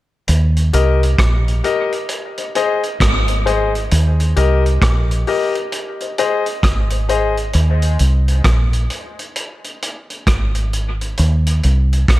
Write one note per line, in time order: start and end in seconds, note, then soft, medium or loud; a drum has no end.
0.28 0.70 D#2 medium
0.28 closed hi-hat medium
0.57 closed hi-hat medium
0.73 1.15 C2 medium
0.73 0.99 G4 medium
0.73 0.99 A#4 medium
0.73 0.99 D#5 loud
0.73 closed hi-hat medium
1.03 closed hi-hat medium
1.19 1.61 A#1 medium
1.19 kick loud
1.19 cross-stick loud
1.19 closed hi-hat medium
1.48 closed hi-hat medium
1.64 1.89 G4 medium
1.64 1.90 A#4 medium
1.64 1.90 D#5 loud
1.64 closed hi-hat medium
1.92 closed hi-hat medium
2.09 closed hi-hat medium
2.37 2.45 C5 soft
2.37 2.45 D#5 soft
2.37 closed hi-hat medium
2.55 2.80 G#4 medium
2.55 2.81 C5 medium
2.55 2.81 D#5 loud
2.55 closed hi-hat medium
2.83 closed hi-hat soft
3.00 3.87 G#1 loud
3.00 kick medium
3.00 cross-stick loud
3.00 closed hi-hat medium
3.28 3.36 C5 soft
3.28 3.36 D#5 soft
3.28 closed hi-hat medium
3.45 3.71 G#4 medium
3.45 3.71 C5 medium
3.45 3.72 D#5 medium
3.45 closed hi-hat medium
3.75 closed hi-hat medium
3.91 4.33 D#2 loud
3.91 closed hi-hat medium
4.20 closed hi-hat medium
4.36 4.78 C2 medium
4.36 4.62 G4 medium
4.36 4.62 A#4 medium
4.36 4.63 D#5 loud
4.36 closed hi-hat medium
4.66 closed hi-hat soft
4.82 5.24 A#1 loud
4.82 kick loud
4.82 cross-stick loud
4.82 closed hi-hat loud
5.11 closed hi-hat medium
5.27 5.53 G4 medium
5.27 5.53 A#4 medium
5.27 5.53 D#5 medium
5.27 open hi-hat medium
5.55 closed hi-hat medium
5.72 closed hi-hat medium
6.00 6.08 C5 soft
6.00 6.08 D#5 soft
6.00 closed hi-hat medium
6.18 6.44 G#4 medium
6.18 6.44 C5 medium
6.18 6.44 D#5 loud
6.18 closed hi-hat medium
6.46 closed hi-hat soft
6.63 7.51 G#1 loud
6.63 kick loud
6.63 cross-stick loud
6.63 closed hi-hat medium
6.90 6.99 C5 soft
6.90 6.99 D#5 soft
6.90 closed hi-hat medium
7.09 7.34 G#4 medium
7.09 7.35 C5 medium
7.09 7.35 D#5 loud
7.09 closed hi-hat medium
7.37 closed hi-hat medium
7.53 7.96 D#2 loud
7.53 closed hi-hat medium
7.82 closed hi-hat medium
7.99 8.42 C2 medium
7.99 closed hi-hat medium
8.28 closed hi-hat medium
8.44 8.87 A#1 medium
8.44 kick loud
8.44 cross-stick loud
8.44 closed hi-hat medium
8.73 closed hi-hat medium
8.90 closed hi-hat medium
9.19 closed hi-hat medium
9.36 closed hi-hat medium
9.64 closed hi-hat soft
9.82 closed hi-hat medium
10.10 closed hi-hat soft
10.27 11.14 G#1 medium
10.27 kick loud
10.27 cross-stick loud
10.27 closed hi-hat medium
10.55 closed hi-hat medium
10.73 closed hi-hat medium
11.01 closed hi-hat medium
11.17 11.60 D#2 loud
11.17 closed hi-hat medium
11.46 closed hi-hat medium
11.63 12.05 C2 medium
11.63 closed hi-hat medium
11.93 closed hi-hat medium
12.08 12.20 A#1 medium
12.08 kick loud
12.08 cross-stick loud
12.08 closed hi-hat medium